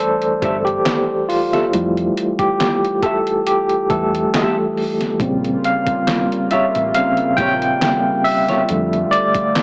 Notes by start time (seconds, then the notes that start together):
Already playing: E3 G3 A3 C5 D5
0.00 A4
0.22 closed hi-hat
0.42 G1 G4 A4 E5, kick, closed hi-hat
0.65 G4, closed hi-hat
0.86 snare, clap, closed hi-hat
1.29 F4, open hi-hat
1.53 G4 A4 E5, snare, closed hi-hat
1.73 F2 G3 A3 E4, closed hi-hat
1.97 closed hi-hat
2.17 closed hi-hat
2.39 G4, kick, closed hi-hat
2.60 snare, clap, closed hi-hat
2.85 closed hi-hat
3.03 G4 A4 E5, kick, closed hi-hat
3.27 closed hi-hat
3.47 G4, closed hi-hat
3.69 closed hi-hat
3.90 E2 E3 G3 A3 A4, kick, closed hi-hat
4.15 closed hi-hat
4.34 G4 A4 E5, snare, clap, closed hi-hat
4.77 open hi-hat
5.01 snare, closed hi-hat
5.20 A#1 C#3 G3 A#3 C4 F4, kick, closed hi-hat
5.44 closed hi-hat
5.64 F5, closed hi-hat
5.87 kick, closed hi-hat
6.07 snare, clap, closed hi-hat
6.32 closed hi-hat
6.51 F4 G4 C#5 E5, muted fingered electric bass stroke, closed hi-hat
6.75 A1, closed hi-hat
6.95 C#3 G3 C4 F5, closed hi-hat
7.17 closed hi-hat
7.37 A#1 F4 G4 C#5 G5, kick, closed hi-hat
7.62 closed hi-hat
7.82 snare, clap, closed hi-hat
8.24 E5, open hi-hat
8.48 F4 G4 C#5, snare, closed hi-hat
8.67 F2 D3 G3 A3 F4, closed hi-hat
8.93 closed hi-hat
9.11 D5, closed hi-hat
9.35 kick, closed hi-hat
9.55 snare, clap, closed hi-hat